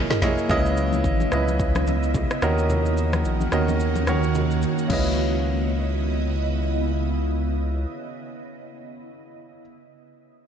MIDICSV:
0, 0, Header, 1, 7, 480
1, 0, Start_track
1, 0, Tempo, 550459
1, 432, Time_signature, 4, 2, 24, 8
1, 9130, End_track
2, 0, Start_track
2, 0, Title_t, "Synth pluck"
2, 0, Program_c, 0, 84
2, 88, Note_on_c, 0, 64, 77
2, 90, Note_on_c, 0, 68, 70
2, 91, Note_on_c, 0, 70, 71
2, 93, Note_on_c, 0, 75, 86
2, 166, Note_off_c, 0, 64, 0
2, 167, Note_off_c, 0, 68, 0
2, 167, Note_off_c, 0, 70, 0
2, 168, Note_off_c, 0, 75, 0
2, 9130, End_track
3, 0, Start_track
3, 0, Title_t, "Grand piano"
3, 0, Program_c, 1, 0
3, 0, Control_c, 1, 64, 127
3, 0, Note_on_c, 1, 58, 89
3, 0, Note_on_c, 1, 64, 76
3, 0, Note_on_c, 1, 68, 78
3, 0, Note_on_c, 1, 73, 78
3, 0, Note_on_c, 1, 75, 98
3, 110, Note_off_c, 1, 58, 0
3, 112, Note_off_c, 1, 64, 0
3, 113, Note_off_c, 1, 68, 0
3, 115, Note_off_c, 1, 73, 0
3, 116, Note_off_c, 1, 75, 0
3, 192, Note_on_c, 1, 58, 91
3, 195, Note_on_c, 1, 64, 83
3, 197, Note_on_c, 1, 68, 82
3, 200, Note_on_c, 1, 73, 83
3, 203, Note_on_c, 1, 75, 99
3, 391, Note_off_c, 1, 58, 0
3, 393, Note_off_c, 1, 64, 0
3, 394, Note_off_c, 1, 68, 0
3, 395, Note_off_c, 1, 73, 0
3, 397, Note_off_c, 1, 75, 0
3, 432, Note_on_c, 1, 49, 113
3, 434, Note_on_c, 1, 61, 104
3, 437, Note_on_c, 1, 64, 99
3, 440, Note_on_c, 1, 71, 95
3, 443, Note_on_c, 1, 75, 121
3, 444, Control_c, 1, 64, 0
3, 574, Control_c, 1, 64, 127
3, 1023, Note_off_c, 1, 49, 0
3, 1024, Note_off_c, 1, 61, 0
3, 1025, Note_off_c, 1, 64, 0
3, 1027, Note_off_c, 1, 71, 0
3, 1028, Note_off_c, 1, 75, 0
3, 1151, Note_on_c, 1, 49, 83
3, 1154, Note_on_c, 1, 61, 78
3, 1156, Note_on_c, 1, 64, 77
3, 1159, Note_on_c, 1, 71, 77
3, 1162, Note_on_c, 1, 75, 92
3, 1927, Note_off_c, 1, 49, 0
3, 1928, Note_off_c, 1, 61, 0
3, 1929, Note_off_c, 1, 64, 0
3, 1931, Note_off_c, 1, 71, 0
3, 1933, Note_off_c, 1, 75, 0
3, 2111, Note_on_c, 1, 51, 83
3, 2114, Note_on_c, 1, 61, 79
3, 2116, Note_on_c, 1, 66, 80
3, 2119, Note_on_c, 1, 70, 83
3, 2122, Control_c, 1, 64, 0
3, 2122, Note_on_c, 1, 75, 91
3, 2275, Control_c, 1, 64, 127
3, 2887, Note_off_c, 1, 51, 0
3, 2888, Note_off_c, 1, 61, 0
3, 2889, Note_off_c, 1, 66, 0
3, 2891, Note_off_c, 1, 70, 0
3, 2892, Note_off_c, 1, 75, 0
3, 3071, Note_on_c, 1, 51, 86
3, 3073, Note_on_c, 1, 61, 75
3, 3076, Note_on_c, 1, 66, 75
3, 3079, Note_on_c, 1, 70, 75
3, 3081, Note_on_c, 1, 75, 94
3, 3470, Note_off_c, 1, 51, 0
3, 3472, Note_off_c, 1, 61, 0
3, 3473, Note_off_c, 1, 66, 0
3, 3474, Note_off_c, 1, 70, 0
3, 3476, Note_off_c, 1, 75, 0
3, 3551, Note_on_c, 1, 51, 81
3, 3554, Note_on_c, 1, 61, 71
3, 3557, Note_on_c, 1, 66, 73
3, 3560, Note_on_c, 1, 70, 71
3, 3562, Note_on_c, 1, 73, 90
3, 4143, Note_off_c, 1, 51, 0
3, 4144, Note_off_c, 1, 61, 0
3, 4145, Note_off_c, 1, 66, 0
3, 4147, Note_off_c, 1, 70, 0
3, 4148, Note_off_c, 1, 73, 0
3, 4254, Note_on_c, 1, 49, 81
3, 4265, Note_on_c, 1, 61, 74
3, 4276, Note_on_c, 1, 64, 72
3, 4282, Control_c, 1, 64, 0
3, 4287, Note_on_c, 1, 71, 73
3, 4298, Note_on_c, 1, 75, 87
3, 4414, Control_c, 1, 64, 127
3, 7000, Note_off_c, 1, 49, 0
3, 7011, Note_off_c, 1, 61, 0
3, 7022, Note_off_c, 1, 64, 0
3, 7033, Note_off_c, 1, 71, 0
3, 7043, Note_off_c, 1, 75, 0
3, 8384, Control_c, 1, 64, 0
3, 9130, End_track
4, 0, Start_track
4, 0, Title_t, "Ambient pad"
4, 0, Program_c, 2, 92
4, 0, Note_on_c, 2, 54, 80
4, 0, Note_on_c, 2, 58, 71
4, 0, Note_on_c, 2, 64, 93
4, 410, Note_off_c, 2, 54, 0
4, 410, Note_off_c, 2, 58, 0
4, 410, Note_off_c, 2, 64, 0
4, 431, Note_on_c, 2, 49, 77
4, 431, Note_on_c, 2, 59, 68
4, 431, Note_on_c, 2, 64, 87
4, 431, Note_on_c, 2, 75, 74
4, 2094, Note_off_c, 2, 59, 0
4, 2094, Note_off_c, 2, 64, 0
4, 2095, Note_off_c, 2, 49, 0
4, 2095, Note_off_c, 2, 75, 0
4, 2111, Note_on_c, 2, 51, 81
4, 2111, Note_on_c, 2, 58, 76
4, 2111, Note_on_c, 2, 61, 72
4, 2111, Note_on_c, 2, 66, 87
4, 4250, Note_off_c, 2, 51, 0
4, 4250, Note_off_c, 2, 58, 0
4, 4250, Note_off_c, 2, 61, 0
4, 4250, Note_off_c, 2, 66, 0
4, 4272, Note_on_c, 2, 49, 74
4, 4272, Note_on_c, 2, 59, 70
4, 4272, Note_on_c, 2, 64, 86
4, 4272, Note_on_c, 2, 75, 72
4, 6854, Note_off_c, 2, 49, 0
4, 6854, Note_off_c, 2, 59, 0
4, 6854, Note_off_c, 2, 64, 0
4, 6854, Note_off_c, 2, 75, 0
4, 9130, End_track
5, 0, Start_track
5, 0, Title_t, "Analog synth bass"
5, 0, Program_c, 3, 38
5, 431, Note_on_c, 3, 37, 107
5, 909, Note_on_c, 3, 32, 94
5, 922, Note_off_c, 3, 37, 0
5, 1108, Note_off_c, 3, 32, 0
5, 1152, Note_on_c, 3, 37, 90
5, 1945, Note_off_c, 3, 37, 0
5, 2113, Note_on_c, 3, 39, 100
5, 2832, Note_on_c, 3, 34, 92
5, 2846, Note_off_c, 3, 39, 0
5, 3030, Note_off_c, 3, 34, 0
5, 3072, Note_on_c, 3, 39, 91
5, 4063, Note_off_c, 3, 39, 0
5, 4272, Note_on_c, 3, 37, 94
5, 6854, Note_off_c, 3, 37, 0
5, 9130, End_track
6, 0, Start_track
6, 0, Title_t, "Log drum bass"
6, 0, Program_c, 4, 39
6, 191, Note_on_c, 4, 34, 85
6, 324, Note_off_c, 4, 34, 0
6, 9130, End_track
7, 0, Start_track
7, 0, Title_t, "Drums"
7, 91, Note_on_c, 9, 45, 88
7, 91, Note_on_c, 9, 82, 49
7, 93, Note_on_c, 9, 38, 68
7, 178, Note_off_c, 9, 45, 0
7, 178, Note_off_c, 9, 82, 0
7, 180, Note_off_c, 9, 38, 0
7, 192, Note_on_c, 9, 38, 72
7, 192, Note_on_c, 9, 64, 70
7, 192, Note_on_c, 9, 82, 92
7, 279, Note_off_c, 9, 38, 0
7, 279, Note_off_c, 9, 64, 0
7, 279, Note_off_c, 9, 82, 0
7, 331, Note_on_c, 9, 82, 59
7, 419, Note_off_c, 9, 82, 0
7, 431, Note_on_c, 9, 36, 114
7, 431, Note_on_c, 9, 64, 69
7, 432, Note_on_c, 9, 82, 80
7, 518, Note_off_c, 9, 36, 0
7, 519, Note_off_c, 9, 64, 0
7, 519, Note_off_c, 9, 82, 0
7, 571, Note_on_c, 9, 82, 58
7, 658, Note_off_c, 9, 82, 0
7, 673, Note_on_c, 9, 82, 77
7, 760, Note_off_c, 9, 82, 0
7, 808, Note_on_c, 9, 63, 69
7, 809, Note_on_c, 9, 82, 49
7, 895, Note_off_c, 9, 63, 0
7, 897, Note_off_c, 9, 82, 0
7, 909, Note_on_c, 9, 36, 94
7, 912, Note_on_c, 9, 82, 68
7, 996, Note_off_c, 9, 36, 0
7, 999, Note_off_c, 9, 82, 0
7, 1048, Note_on_c, 9, 63, 63
7, 1051, Note_on_c, 9, 82, 50
7, 1135, Note_off_c, 9, 63, 0
7, 1138, Note_off_c, 9, 82, 0
7, 1149, Note_on_c, 9, 37, 90
7, 1152, Note_on_c, 9, 82, 76
7, 1237, Note_off_c, 9, 37, 0
7, 1239, Note_off_c, 9, 82, 0
7, 1291, Note_on_c, 9, 63, 65
7, 1291, Note_on_c, 9, 82, 54
7, 1378, Note_off_c, 9, 63, 0
7, 1378, Note_off_c, 9, 82, 0
7, 1391, Note_on_c, 9, 36, 109
7, 1393, Note_on_c, 9, 82, 83
7, 1479, Note_off_c, 9, 36, 0
7, 1480, Note_off_c, 9, 82, 0
7, 1528, Note_on_c, 9, 63, 75
7, 1529, Note_on_c, 9, 82, 56
7, 1532, Note_on_c, 9, 37, 86
7, 1615, Note_off_c, 9, 63, 0
7, 1616, Note_off_c, 9, 82, 0
7, 1620, Note_off_c, 9, 37, 0
7, 1632, Note_on_c, 9, 82, 88
7, 1635, Note_on_c, 9, 63, 71
7, 1719, Note_off_c, 9, 82, 0
7, 1722, Note_off_c, 9, 63, 0
7, 1771, Note_on_c, 9, 82, 49
7, 1858, Note_off_c, 9, 82, 0
7, 1871, Note_on_c, 9, 36, 85
7, 1871, Note_on_c, 9, 82, 83
7, 1875, Note_on_c, 9, 64, 67
7, 1958, Note_off_c, 9, 36, 0
7, 1959, Note_off_c, 9, 82, 0
7, 1962, Note_off_c, 9, 64, 0
7, 2012, Note_on_c, 9, 82, 47
7, 2013, Note_on_c, 9, 37, 88
7, 2099, Note_off_c, 9, 82, 0
7, 2100, Note_off_c, 9, 37, 0
7, 2113, Note_on_c, 9, 37, 98
7, 2113, Note_on_c, 9, 82, 86
7, 2200, Note_off_c, 9, 37, 0
7, 2200, Note_off_c, 9, 82, 0
7, 2252, Note_on_c, 9, 82, 57
7, 2339, Note_off_c, 9, 82, 0
7, 2351, Note_on_c, 9, 64, 68
7, 2352, Note_on_c, 9, 82, 79
7, 2439, Note_off_c, 9, 64, 0
7, 2440, Note_off_c, 9, 82, 0
7, 2491, Note_on_c, 9, 82, 58
7, 2579, Note_off_c, 9, 82, 0
7, 2594, Note_on_c, 9, 82, 73
7, 2681, Note_off_c, 9, 82, 0
7, 2729, Note_on_c, 9, 63, 68
7, 2730, Note_on_c, 9, 82, 50
7, 2732, Note_on_c, 9, 37, 89
7, 2816, Note_off_c, 9, 63, 0
7, 2817, Note_off_c, 9, 82, 0
7, 2819, Note_off_c, 9, 37, 0
7, 2833, Note_on_c, 9, 82, 65
7, 2920, Note_off_c, 9, 82, 0
7, 2969, Note_on_c, 9, 63, 58
7, 2972, Note_on_c, 9, 82, 49
7, 3056, Note_off_c, 9, 63, 0
7, 3059, Note_off_c, 9, 82, 0
7, 3070, Note_on_c, 9, 37, 88
7, 3073, Note_on_c, 9, 82, 71
7, 3157, Note_off_c, 9, 37, 0
7, 3160, Note_off_c, 9, 82, 0
7, 3212, Note_on_c, 9, 63, 67
7, 3212, Note_on_c, 9, 82, 52
7, 3299, Note_off_c, 9, 63, 0
7, 3299, Note_off_c, 9, 82, 0
7, 3313, Note_on_c, 9, 82, 78
7, 3401, Note_off_c, 9, 82, 0
7, 3449, Note_on_c, 9, 63, 73
7, 3450, Note_on_c, 9, 82, 57
7, 3536, Note_off_c, 9, 63, 0
7, 3537, Note_off_c, 9, 82, 0
7, 3552, Note_on_c, 9, 37, 89
7, 3552, Note_on_c, 9, 82, 80
7, 3555, Note_on_c, 9, 63, 71
7, 3639, Note_off_c, 9, 37, 0
7, 3640, Note_off_c, 9, 82, 0
7, 3643, Note_off_c, 9, 63, 0
7, 3691, Note_on_c, 9, 82, 49
7, 3778, Note_off_c, 9, 82, 0
7, 3792, Note_on_c, 9, 82, 85
7, 3795, Note_on_c, 9, 64, 69
7, 3879, Note_off_c, 9, 82, 0
7, 3882, Note_off_c, 9, 64, 0
7, 3932, Note_on_c, 9, 82, 46
7, 4019, Note_off_c, 9, 82, 0
7, 4033, Note_on_c, 9, 82, 89
7, 4120, Note_off_c, 9, 82, 0
7, 4172, Note_on_c, 9, 82, 54
7, 4259, Note_off_c, 9, 82, 0
7, 4271, Note_on_c, 9, 63, 76
7, 4272, Note_on_c, 9, 36, 99
7, 4272, Note_on_c, 9, 49, 84
7, 4359, Note_off_c, 9, 36, 0
7, 4359, Note_off_c, 9, 49, 0
7, 4359, Note_off_c, 9, 63, 0
7, 9130, End_track
0, 0, End_of_file